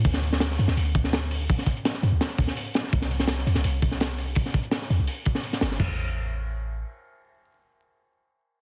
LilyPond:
<<
  \new Staff \with { instrumentName = "808-style bass" } { \clef bass \time 4/4 \key d \mixolydian \tempo 4 = 167 d,4. fis,16 d,16 d,2 | r4. fis,16 d,16 r8 d,16 r4 r16 | c,4. e,16 c,16 c,2 | r4. e,16 c,16 r4. g,,8 |
a,,2. r4 | r1 | }
  \new DrumStaff \with { instrumentName = "Drums" } \drummode { \time 4/4 <hho bd>16 sn16 hho16 sn16 <hho sn>16 sn16 hho16 sn16 hho8 <hho bd>16 sn16 <hho sn>8 hho8 | <hho bd>16 sn16 <hho bd>16 hh16 <hho sn>16 sn16 hho8 <hho sn>16 sn16 <hho bd>16 sn16 hho8 <hho sn>16 sn16 | <hho bd>16 sn16 hho16 sn16 <hho sn>16 sn16 hho16 sn16 hho8 <hho bd>16 sn16 <hho sn>8 hho8 | <hho bd>16 sn16 <hho bd>16 hh16 <hho sn>16 sn16 hho8 hho8 <hho bd>16 sn16 hho16 sn16 <hho sn>16 sn16 |
<cymc bd tomfh>4 r4 r4 r4 | r4 r4 r4 r4 | }
>>